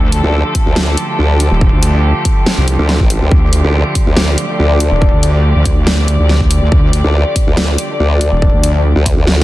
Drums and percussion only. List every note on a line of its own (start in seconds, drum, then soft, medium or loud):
0.12 closed hi-hat medium
0.55 kick medium
0.55 closed hi-hat medium
0.76 snare loud
0.97 closed hi-hat medium
1.40 closed hi-hat medium
1.61 kick loud
1.83 closed hi-hat medium
2.25 kick medium
2.25 closed hi-hat medium
2.46 snare loud
2.68 closed hi-hat medium
2.89 snare medium
3.00 kick medium
3.10 closed hi-hat medium
3.31 kick loud
3.53 closed hi-hat medium
3.95 kick medium
3.95 closed hi-hat medium
4.17 snare loud
4.38 closed hi-hat medium
4.80 closed hi-hat medium
5.02 kick loud
5.23 closed hi-hat medium
5.66 kick medium
5.66 closed hi-hat medium
5.87 snare loud
6.08 closed hi-hat medium
6.29 snare medium
6.40 kick medium
6.51 closed hi-hat medium
6.72 kick loud
6.93 closed hi-hat medium
7.36 kick medium
7.36 closed hi-hat medium
7.57 snare loud
7.78 closed hi-hat medium
8.21 closed hi-hat medium
8.42 kick loud
8.63 closed hi-hat medium
9.06 kick medium
9.06 closed hi-hat medium
9.27 snare medium